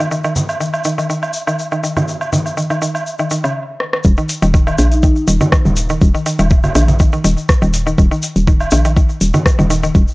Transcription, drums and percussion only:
0.11 shaker
0.24 low woodblock, shaker
0.36 low conga, shaker
0.49 low woodblock, shaker
0.61 shaker
0.73 low woodblock, shaker
0.84 shaker
0.98 low woodblock, shaker
1.10 shaker
1.23 low woodblock, shaker
1.33 shaker
1.47 low woodblock, shaker
1.59 shaker
1.72 low woodblock, shaker
1.84 shaker
1.97 low conga, low woodblock, shaker
2.08 shaker
2.21 low woodblock, shaker
2.33 low conga, shaker
2.46 low woodblock, shaker
2.57 shaker
2.70 low woodblock, shaker
2.82 shaker
2.95 low woodblock, shaker
3.07 shaker
3.19 low woodblock, shaker
3.30 shaker
3.44 low woodblock, shaker
3.80 cross-stick
3.93 cross-stick
4.04 kick, shaker
4.17 shaker
4.29 open hi-hat, shaker
4.42 open hi-hat, shaker
4.54 kick, shaker
4.67 low woodblock, shaker
4.78 open hi-hat, low woodblock, shaker
4.92 open hi-hat, shaker
5.03 kick, shaker
5.16 shaker
5.28 open hi-hat, shaker
5.41 low conga, shaker
5.52 kick, cross-stick, shaker
5.65 low conga, shaker
5.76 open hi-hat, shaker
5.89 shaker
6.02 kick, shaker
6.15 shaker
6.26 open hi-hat, shaker
6.39 open hi-hat, low woodblock, shaker
6.50 kick, shaker
6.63 low conga, low woodblock, shaker
6.75 open hi-hat, low woodblock, shaker
6.88 open hi-hat, low conga, shaker
6.99 kick, shaker
7.12 shaker
7.24 open hi-hat, shaker
7.37 shaker
7.49 kick, cross-stick, shaker
7.62 shaker
7.74 open hi-hat, shaker
7.87 shaker
7.98 kick, shaker
8.12 shaker
8.22 open hi-hat, shaker
8.36 open hi-hat, shaker
8.47 kick, shaker
8.60 low woodblock, shaker
8.71 open hi-hat, low woodblock, shaker
8.85 open hi-hat, shaker
8.97 kick, shaker
9.09 shaker
9.21 open hi-hat, shaker
9.34 low conga, shaker
9.46 kick, cross-stick, shaker
9.59 low conga, shaker
9.70 open hi-hat, shaker
9.83 shaker
9.95 kick, shaker
10.08 shaker

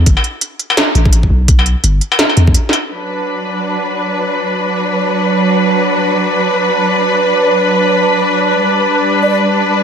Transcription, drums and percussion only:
0.06 kick, closed hi-hat
0.17 struck metal
0.24 closed hi-hat
0.41 closed hi-hat
0.59 closed hi-hat
0.70 struck metal
0.77 snare, closed hi-hat
0.95 closed hi-hat
1.05 kick
1.13 closed hi-hat
1.23 kick
1.48 kick, closed hi-hat
1.59 struck metal
1.66 closed hi-hat
1.84 closed hi-hat
2.01 closed hi-hat
2.12 struck metal
2.19 snare, closed hi-hat
2.29 struck metal
2.37 closed hi-hat
2.47 kick
2.54 closed hi-hat
2.69 snare, closed hi-hat, struck metal

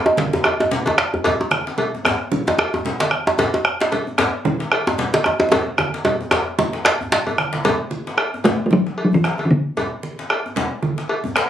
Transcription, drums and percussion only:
0.06 djembe slap, djembe tone
0.17 djembe slap, high conga, low conga
0.33 djembe slap, high conga, djembe bass
0.44 bombo rim, cowbell, djembe slap, djembe tone
0.60 bombo low, djembe tone, djembe bass
0.71 djembe slap, low conga
0.86 cowbell, high conga, djembe tone
0.98 bombo rim, djembe slap
1.14 djembe bass
1.24 bombo low, cowbell, djembe slap, djembe tone, low conga, djembe bass
1.41 djembe tone
1.51 bombo rim, high conga
1.67 djembe slap
1.78 cowbell, high conga, low conga
1.95 djembe slap, djembe tone
2.05 bombo rim, bombo low, cowbell, djembe slap, djembe bass
2.22 djembe slap
2.32 high conga, low conga
2.46 djembe slap, high conga, djembe tone
2.58 bombo rim, cowbell, djembe tone
2.73 bombo low, high conga, djembe tone, djembe bass
2.85 djembe slap, low conga
3.00 cowbell, djembe slap, high conga, djembe tone
3.11 bombo rim
3.27 djembe tone
3.38 bombo low, cowbell, djembe slap, djembe tone, low conga, djembe bass
3.54 djembe tone
3.65 bombo rim
3.80 djembe slap
3.92 cowbell, high conga, low conga
4.07 djembe slap, djembe tone
4.18 bombo rim, bombo low, cowbell, djembe slap, djembe bass
4.34 djembe slap
4.45 high conga, low conga
4.60 djembe slap, high conga
4.72 bombo rim, cowbell
4.87 bombo low, djembe tone, djembe bass
4.98 djembe slap, low conga
5.13 cowbell, djembe slap, high conga, djembe tone
5.24 bombo rim, djembe tone
5.40 djembe tone
5.51 bombo low, cowbell, djembe slap, djembe tone, low conga, djembe bass
5.67 djembe slap, high conga
5.78 bombo rim, high conga, djembe tone
5.94 djembe slap
6.05 cowbell, high conga, djembe tone, low conga
6.21 djembe tone
6.31 bombo rim, bombo low, cowbell, djembe slap, djembe tone
6.48 djembe slap
6.58 bombo rim, high conga, djembe tone, low conga
6.73 bombo rim, djembe slap
6.85 bombo rim, cowbell, djembe slap, high conga
7.01 bombo low, djembe bass
7.12 djembe slap, low conga, djembe bass
7.27 cowbell, low conga, djembe bass
7.38 bombo rim, djembe slap, high conga
7.53 bombo rim, djembe slap, high conga
7.65 bombo low, cowbell, djembe slap, djembe bass, low conga
7.91 djembe slap, high conga
8.07 djembe slap
8.17 bombo rim, cowbell
8.34 djembe tone
8.44 bombo low, cowbell, djembe slap, low conga, djembe bass
8.71 bombo rim, high conga
8.86 bombo rim, djembe slap
8.98 cowbell
9.12 bombo low, high conga, low conga, djembe bass
9.24 bombo rim, djembe slap, high conga
9.38 cowbell, high conga, djembe tone
9.77 bombo low, cowbell, djembe slap, low conga, djembe bass
10.03 djembe slap, high conga
10.19 djembe slap
10.30 bombo rim, cowbell
10.46 djembe tone
10.56 bombo low, djembe slap, low conga
10.82 bombo rim, high conga
10.98 bombo rim, djembe slap
11.09 cowbell
11.24 bombo low, high conga, low conga, djembe bass
11.36 bombo rim, djembe slap, high conga

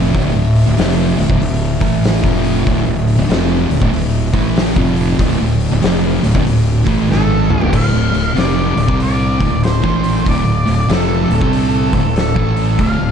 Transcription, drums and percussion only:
0.14 kick, open hi-hat
0.55 open hi-hat
0.78 snare, open hi-hat
1.19 open hi-hat
1.30 kick
1.42 open hi-hat
1.81 kick, open hi-hat
2.04 snare, open hi-hat
2.24 kick
2.45 open hi-hat
2.67 kick, open hi-hat
3.08 open hi-hat
3.30 snare, open hi-hat
3.71 open hi-hat
3.82 kick
3.93 open hi-hat
4.34 kick, open hi-hat
4.56 snare, open hi-hat
4.76 kick
4.96 open hi-hat
5.19 kick, open hi-hat
5.60 open hi-hat
5.82 snare, open hi-hat
6.24 open hi-hat
6.35 kick
6.47 open hi-hat
6.87 kick, open hi-hat
7.12 snare
7.50 mid tom
7.61 floor tom
7.73 kick, crash
8.14 open hi-hat
8.37 snare, open hi-hat
8.77 open hi-hat
8.88 kick
9.00 open hi-hat
9.41 kick, open hi-hat
9.63 snare, open hi-hat
9.84 kick
10.04 open hi-hat
10.26 kick, open hi-hat
10.67 open hi-hat
10.89 snare, open hi-hat
11.31 open hi-hat
11.41 kick
11.53 open hi-hat
11.93 kick, open hi-hat
12.16 snare, open hi-hat
12.36 kick
12.56 open hi-hat
12.79 kick, open hi-hat

